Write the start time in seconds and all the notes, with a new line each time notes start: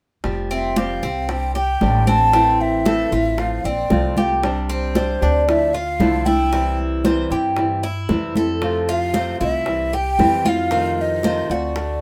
0.24 F1 F3 G3 C4 G4, high bongo, high conga
0.51 C4 E5, high conga
0.76 F3 G3 C4 G4 F5, high bongo, high conga
1.03 C2 G3 C4 G4, high bongo
1.29 G3 C4 D4 G4 G5, high bongo, high conga
1.55 G4 G5, muted nylon-string guitar stroke, high bongo, high conga
1.81 A1 C3 G3 C4 D4 G4, high bongo, low bongo, high conga
2.07 C4 D4 G4 A5, high bongo, high conga
2.33 E3 A3 C4 E4, high bongo, high conga
2.60 E5, high conga
2.85 E3 A3 C4 E4 A4, high bongo, high conga
3.11 A1 A3 C4 E4 F4, high bongo, high conga
3.38 F3 A3 C4 F4 F5, high bongo, high conga
3.64 A#1 C4 D5, muted nylon-string guitar stroke, high bongo, high conga
3.90 C2 F3 A3 C4 F4, high bongo, low bongo, high conga
4.16 A3 C4 F4 G4, high bongo, high conga
4.43 C3 G3 C4 D4 G4, high bongo, high conga
4.69 C4 C5, high conga
4.95 C3 G3 C4 D4 G4 C5, high bongo, high conga
5.21 D2 C4 D4 G4, high bongo
5.48 F3 A3 D4 E4 E5, high bongo, high conga
5.73 F4 F5, muted nylon-string guitar stroke, high bongo, high conga
6.00 C2 D3 F3 A3 D4 E4, high bongo, low bongo, high conga
6.26 A3 D4 E4 G5, high bongo, high conga
6.52 C3 E3 G3 C4 E4, high bongo, high conga
6.79 high conga
7.04 C3 E3 G3 C4 E4 C5, high bongo, high conga
7.30 G2 G3 C4 E4 G4, high bongo, high conga
7.57 E3 G3 C4 E4, high bongo, high conga
7.83 E4, muted nylon-string guitar stroke, high bongo, high conga
8.09 F2 C3 E3 G3 C4 E4, high bongo, low bongo, high conga
8.36 G3 C4 E4 A4, high bongo, high conga
8.62 C3 F3 A3 C4 F4, high bongo, high conga
8.88 F4 F5, high conga
9.14 C3 F3 A3 C4 F4 C5, high bongo, high conga
9.40 C2 A3 C4 E4 F4 E5, high bongo
9.66 E3 G3 C4 E4, high bongo, high conga
9.93 G4 G5, muted nylon-string guitar stroke, high bongo, high conga
10.19 F2 C3 E3 G3 C4 E4, high bongo, low bongo, high conga
10.45 G3 C4 E4 F4 F5, high bongo, high conga
10.71 C3 D#3 A3 C4 F4, high bongo, high conga
10.98 D#5, high conga
11.23 C3 D#3 A3 C4 F4 C5, high bongo, high conga
11.50 D2 A3 C4 F4 F#4 D5, high bongo, high conga
11.76 D3 A3 D4 F#4, high bongo, high conga